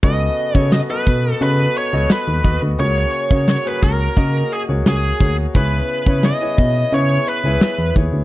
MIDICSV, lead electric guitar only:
0, 0, Header, 1, 2, 480
1, 0, Start_track
1, 0, Tempo, 689655
1, 22, Time_signature, 4, 2, 24, 8
1, 5736, End_track
2, 0, Start_track
2, 0, Title_t, "Lead electric guitar"
2, 0, Program_c, 0, 29
2, 27, Note_on_c, 0, 75, 101
2, 395, Note_off_c, 0, 75, 0
2, 395, Note_on_c, 0, 73, 101
2, 503, Note_off_c, 0, 73, 0
2, 511, Note_on_c, 0, 75, 93
2, 546, Note_off_c, 0, 75, 0
2, 629, Note_on_c, 0, 71, 86
2, 988, Note_off_c, 0, 71, 0
2, 996, Note_on_c, 0, 71, 87
2, 1235, Note_off_c, 0, 71, 0
2, 1238, Note_on_c, 0, 73, 86
2, 1474, Note_off_c, 0, 73, 0
2, 1476, Note_on_c, 0, 71, 84
2, 1804, Note_off_c, 0, 71, 0
2, 1948, Note_on_c, 0, 73, 97
2, 2427, Note_off_c, 0, 73, 0
2, 2435, Note_on_c, 0, 73, 91
2, 2555, Note_off_c, 0, 73, 0
2, 2555, Note_on_c, 0, 71, 74
2, 2668, Note_off_c, 0, 71, 0
2, 2671, Note_on_c, 0, 70, 87
2, 3149, Note_on_c, 0, 68, 74
2, 3160, Note_off_c, 0, 70, 0
2, 3213, Note_off_c, 0, 68, 0
2, 3396, Note_on_c, 0, 68, 81
2, 3724, Note_off_c, 0, 68, 0
2, 3872, Note_on_c, 0, 71, 96
2, 4348, Note_on_c, 0, 75, 92
2, 4361, Note_off_c, 0, 71, 0
2, 4830, Note_on_c, 0, 73, 82
2, 4839, Note_off_c, 0, 75, 0
2, 5071, Note_off_c, 0, 73, 0
2, 5074, Note_on_c, 0, 71, 72
2, 5520, Note_off_c, 0, 71, 0
2, 5736, End_track
0, 0, End_of_file